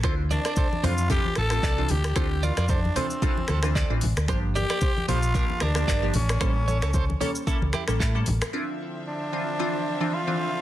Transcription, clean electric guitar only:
X:1
M:4/4
L:1/16
Q:"Swing 16ths" 1/4=113
K:Dm
V:1 name="Clean electric guitar"
[Ac] z [Bd] [Bd] [Ac] z [Ac] z [FA] z [FA] z [Ad]2 z2 | [Ac] z [Bd] [Bd] [Ac] z [Ac] z [FA] z [FA] z [Ad]2 z2 | [Gc] z [Bd] [Bd] [Gc] z [Ac] z [GB] z [GB] z [Bd]2 z2 | [Ac] z [A^c] [Ac] [A=c] z [A^c] z [EA] z [EG] z [EA]2 z2 |
z16 |]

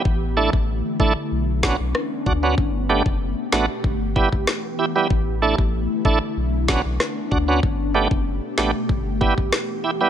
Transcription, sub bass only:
X:1
M:4/4
L:1/16
Q:1/4=95
K:Bm
V:1 name="Sub bass" clef=bass
A,,,3 A,,,2 z A,,, z B,,,3 B,,, z2 D,,2 | G,,,3 F,,,2 z A,,, z G,,,3 G,,, z4 | A,,,3 A,,,2 z A,,, z B,,,3 B,,, z2 D,,2 | G,,,3 F,,,2 z A,,, z G,,,3 G,,, z4 |]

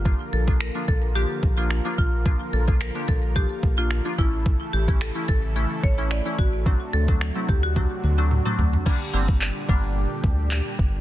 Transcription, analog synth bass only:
X:1
M:4/4
L:1/8
Q:1/4=109
K:Bblyd
V:1 name="Analog synth bass" clef=bass
G,,, B,,,2 B,,,2 B,,,2 B,,,- | B,,, B,,,2 B,,,2 B,,,2 A,,,- | A,,, A,,,2 A,,,2 A,,,2 A,,,- | A,,, D,,2 D,,2 D,,2 D,, |
[K:Gdor] z G,,,2 G,,,2 D,,2 G,,, |]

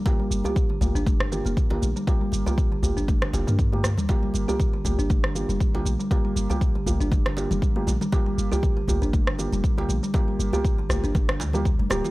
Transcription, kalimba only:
X:1
M:4/4
L:1/16
Q:"Swing 16ths" 1/4=119
K:Gm
V:1 name="Kalimba" clef=bass
z G, z G z D, z D z D, z B, z D, z G, | z G, z G z D, z D z D, z B, z D, z G, | z G, z G z D, z D z D, z G, z D, z G, | z G, z G z D, z D z D, z G, z D, z G, |
z G, z G z D, z D z D, z G, z D, z G, | z G, z G z D, z D z D, z G, z G, G F |]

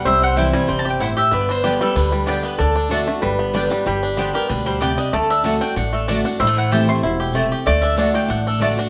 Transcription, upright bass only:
X:1
M:4/4
L:1/8
Q:1/4=189
K:G
V:1 name="Upright bass" clef=bass
C,,4 G,,,4 | G,,,4 D,,4 | D,,4 G,,,4 | G,,,4 D,,4 |
D,,4 A,,,4 | A,,,4 E,,,4 | D,,4 A,,,4 |]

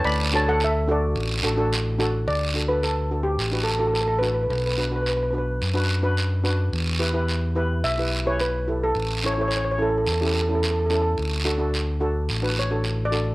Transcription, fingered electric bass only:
X:1
M:4/4
L:1/8
Q:1/4=108
K:D
V:1 name="Fingered electric bass" clef=bass
D,,4 A,,, A,,,3 | D,,4 A,,,4 | B,,,4 F,,4 | E,,4 B,,,4 |
A,,,4 E,,4 | D,,4 A,,,4 |]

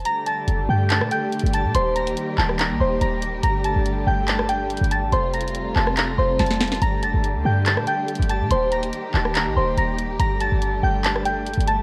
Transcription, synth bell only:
X:1
M:4/4
L:1/8
Q:1/4=142
K:Gm
V:1 name="Synth bell"
[bb'] [aa']2 [gg'] [aa'] [gg']2 [aa'] | [cc'] [bb']2 [aa'] [bb'] [cc'] [bb']2 | [bb'] [aa']2 [gg'] [aa'] [gg']2 [aa'] | [cc'] [bb']2 [aa'] [bb'] [cc'] [aa']2 |
[bb'] [aa']2 [gg'] [aa'] [gg']2 [aa'] | [cc'] [bb']2 [aa'] [bb'] [cc'] [bb']2 | [bb'] [aa']2 [gg'] [aa'] [gg']2 [aa'] |]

